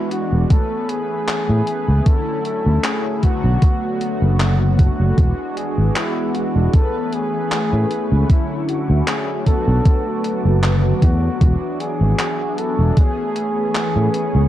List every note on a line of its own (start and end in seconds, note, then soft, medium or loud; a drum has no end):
0.00 0.42 E3 medium
0.00 0.43 G#3 medium
0.00 0.43 B3 medium
0.00 0.44 D4 medium
0.00 0.11 E4 medium
0.00 0.44 F#4 medium
0.11 0.52 F#4 medium
0.11 closed hi-hat medium
0.33 0.44 E1 medium
0.49 1.98 E3 medium
0.49 1.99 A3 medium
0.49 1.99 B3 medium
0.49 2.00 C#4 medium
0.49 0.91 A4 loud
0.49 2.00 B4 medium
0.49 kick loud
0.49 closed hi-hat medium
0.89 2.08 G#4 loud
0.89 closed hi-hat medium
1.28 clap loud
1.28 closed hi-hat medium
1.49 1.60 A2 medium
1.67 closed hi-hat medium
1.88 1.99 C#2 medium
2.05 3.15 D3 medium
2.05 3.16 F#3 medium
2.05 3.16 A3 medium
2.05 3.16 C#4 medium
2.05 3.17 E4 medium
2.05 2.45 A4 loud
2.05 kick loud
2.05 closed hi-hat medium
2.45 2.86 A4 loud
2.45 closed hi-hat medium
2.66 2.77 D2 medium
2.84 3.25 G#4 loud
2.84 clap loud
2.84 closed hi-hat medium
3.22 5.10 D3 medium
3.22 5.10 F#3 medium
3.22 5.11 A3 medium
3.22 5.11 B3 medium
3.22 4.53 F#4 loud
3.22 5.11 F#4 loud
3.22 kick medium
3.22 closed hi-hat medium
3.44 3.55 B1 medium
3.62 kick loud
3.62 closed hi-hat medium
4.01 closed hi-hat medium
4.22 4.87 F#1 medium
4.40 clap loud
4.40 closed hi-hat medium
4.79 5.59 F#4 loud
4.79 kick loud
4.79 closed hi-hat medium
5.00 5.11 F#1 medium
5.16 5.31 E1 medium
5.16 6.66 E3 medium
5.16 6.66 G#3 medium
5.16 6.66 B3 medium
5.16 6.72 G#4 medium
5.16 6.72 F#5 medium
5.16 6.72 D6 medium
5.16 6.72 E6 medium
5.16 kick loud
5.16 closed hi-hat medium
5.57 5.98 G#4 loud
5.57 closed hi-hat medium
5.78 5.89 G#1 medium
5.96 6.37 E4 medium
5.96 clap loud
5.96 closed hi-hat medium
6.35 6.76 F#4 medium
6.35 closed hi-hat medium
6.56 6.67 E1 medium
6.72 8.22 E3 medium
6.72 8.28 A3 medium
6.72 8.22 A3 medium
6.72 8.22 B3 medium
6.72 8.23 C#4 medium
6.72 7.15 A4 loud
6.72 8.23 B4 medium
6.72 8.28 G#5 medium
6.72 8.28 B5 medium
6.72 9.43 C#6 medium
6.72 kick loud
6.72 closed hi-hat medium
7.13 8.30 G#4 loud
7.13 closed hi-hat medium
7.52 clap loud
7.52 closed hi-hat medium
7.73 7.84 A2 medium
7.91 closed hi-hat medium
8.12 8.23 C#2 medium
8.28 9.38 D3 medium
8.28 9.39 F#3 medium
8.28 9.39 A3 medium
8.28 9.39 C#4 medium
8.28 8.46 E4 medium
8.28 9.40 E4 medium
8.28 12.93 F#4 medium
8.28 9.45 E5 medium
8.28 9.45 D6 medium
8.28 kick loud
8.28 closed hi-hat medium
8.69 9.09 F#4 medium
8.69 closed hi-hat medium
8.90 9.01 D2 medium
9.08 9.46 G#4 loud
9.08 clap loud
9.08 closed hi-hat medium
9.45 11.33 D3 medium
9.45 11.34 F#3 medium
9.45 11.34 A3 medium
9.45 11.34 B3 medium
9.45 11.35 F#4 loud
9.45 10.72 A4 loud
9.45 11.39 B4 medium
9.45 11.39 A5 medium
9.45 12.94 D6 medium
9.45 kick medium
9.45 closed hi-hat medium
9.68 9.79 B1 medium
9.85 kick loud
9.85 closed hi-hat medium
10.24 closed hi-hat medium
10.45 10.91 F#1 loud
10.63 clap loud
10.63 closed hi-hat medium
11.02 11.28 E2 medium
11.02 11.82 F#4 loud
11.02 kick loud
11.02 closed hi-hat medium
11.40 11.54 E1 medium
11.40 12.89 E3 medium
11.40 12.90 F#3 medium
11.40 12.90 B3 medium
11.40 12.90 D4 medium
11.40 12.91 F#4 medium
11.40 12.95 E5 medium
11.40 14.48 G#5 medium
11.40 kick loud
11.40 closed hi-hat medium
11.80 12.60 G#4 loud
11.80 closed hi-hat medium
12.01 12.12 G#1 medium
12.19 clap loud
12.19 closed hi-hat medium
12.58 12.99 A4 medium
12.58 closed hi-hat medium
12.79 12.90 E1 medium
12.96 14.45 E3 medium
12.96 14.48 A3 medium
12.96 14.45 A3 medium
12.96 14.46 B3 medium
12.96 14.46 C#4 medium
12.96 14.48 G#4 loud
12.96 14.47 G#4 medium
12.96 14.48 B5 medium
12.96 14.48 C#6 medium
12.96 kick loud
12.96 closed hi-hat medium
13.36 closed hi-hat medium
13.75 clap loud
13.75 closed hi-hat medium
13.96 14.07 A2 medium
14.14 closed hi-hat medium
14.35 14.46 C#2 medium